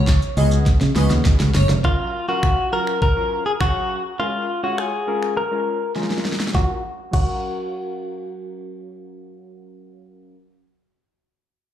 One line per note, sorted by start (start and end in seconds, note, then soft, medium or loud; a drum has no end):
0.00 0.13 C#2 loud
0.00 0.20 C#5 medium
0.07 kick loud
0.07 snare medium
0.07 clap loud
0.07 closed hi-hat medium
0.07 shaker medium
0.22 closed hi-hat medium
0.22 shaker medium
0.37 0.57 C#2 medium
0.37 0.72 G#3 medium
0.37 0.72 B3 medium
0.37 0.72 C#4 medium
0.37 0.73 F#4 medium
0.37 0.73 G#4 medium
0.37 0.48 D#5 medium
0.37 open hi-hat medium
0.37 shaker medium
0.51 closed hi-hat medium
0.51 shaker medium
0.66 kick loud
0.66 snare medium
0.66 closed hi-hat medium
0.66 shaker medium
0.81 0.91 C#3 medium
0.81 snare medium
0.81 closed hi-hat medium
0.81 shaker medium
0.96 1.06 C#2 medium
0.96 1.49 G#3 medium
0.96 1.49 B3 medium
0.96 1.49 C#4 medium
0.96 1.49 F#4 medium
0.96 1.49 B4 medium
0.96 1.07 D#5 medium
0.96 snare medium
0.96 open hi-hat medium
0.96 shaker medium
1.10 1.21 D#2 medium
1.10 snare medium
1.10 closed hi-hat medium
1.10 shaker medium
1.25 kick loud
1.25 snare medium
1.25 closed hi-hat medium
1.25 shaker medium
1.40 1.50 C#2 medium
1.40 snare medium
1.40 closed hi-hat medium
1.40 shaker medium
1.55 1.65 F#1 medium
1.55 1.66 C#5 medium
1.55 snare loud
1.55 open hi-hat medium
1.55 shaker medium
1.69 1.80 F1 loud
1.69 snare loud
1.69 closed hi-hat medium
1.69 shaker medium
1.84 2.11 F#3 medium
1.84 2.11 C#4 medium
1.84 2.11 F4 medium
1.84 2.28 F4 medium
1.84 2.11 A#4 medium
1.84 kick loud
2.28 2.55 F#3 medium
2.28 2.55 C#4 medium
2.28 2.55 F4 medium
2.28 2.73 F#4 medium
2.28 2.55 A#4 medium
2.43 finger snap loud
2.43 kick loud
2.72 2.99 F#3 medium
2.72 2.99 C#4 medium
2.72 2.99 F4 medium
2.72 2.99 A#4 medium
2.72 3.01 A#4 loud
2.87 finger snap medium
3.02 3.46 A#4 loud
3.02 kick loud
3.16 3.43 F#3 medium
3.16 3.43 C#4 medium
3.16 3.43 F4 medium
3.16 3.43 A#4 medium
3.46 3.51 G#4 medium
3.60 3.96 F#3 medium
3.60 3.96 C#4 medium
3.60 4.02 F#4 medium
3.60 3.96 C#5 medium
3.60 3.96 F5 medium
3.60 finger snap loud
3.60 kick loud
4.19 4.46 G#3 medium
4.19 4.46 C#4 medium
4.19 4.46 F4 medium
4.19 4.63 F4 medium
4.19 4.46 A#4 medium
4.63 4.90 G#3 medium
4.63 4.90 C#4 medium
4.63 4.90 F4 medium
4.63 4.78 F#4 medium
4.63 4.90 C#5 medium
4.78 5.37 G#4 medium
4.78 finger snap loud
5.07 5.34 G#3 medium
5.07 5.34 C#4 medium
5.07 5.34 F4 medium
5.07 5.34 A#4 medium
5.23 finger snap medium
5.37 5.92 A#4 medium
5.51 5.78 G#3 medium
5.51 5.78 C#4 medium
5.51 5.78 F4 medium
5.51 5.78 A#4 medium
5.95 6.31 G#3 medium
5.95 6.31 C#4 medium
5.95 6.31 F4 medium
5.95 6.31 A#4 medium
5.95 snare soft
6.03 snare soft
6.10 snare medium
6.18 snare medium
6.25 snare medium
6.33 snare medium
6.40 snare medium
6.47 snare medium
6.52 6.70 F#3 medium
6.52 6.71 C#4 medium
6.52 6.71 F4 medium
6.52 6.71 F#4 medium
6.52 kick loud
6.52 snare medium
6.56 6.72 A#4 medium
7.11 10.35 F#3 medium
7.11 10.35 C#4 medium
7.11 10.36 F#4 medium
7.11 10.36 F5 medium
7.11 kick loud
7.11 crash medium
7.15 10.37 A#4 medium